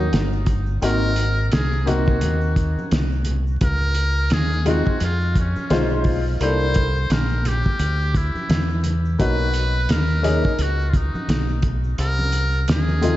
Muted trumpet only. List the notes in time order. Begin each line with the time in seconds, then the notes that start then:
Already playing: D#4
0.84 A#4
1.48 A#4
1.53 G#4
1.88 F#4
3.63 A#4
4.33 G#4
4.68 F#4
5.04 F4
5.40 C#4
6.43 C5
7.13 A#4
7.47 G4
8.17 E4
9.20 B4
9.91 A#4
10.62 F#4
10.90 F4
10.96 D#4
12.00 A#4
12.71 G#4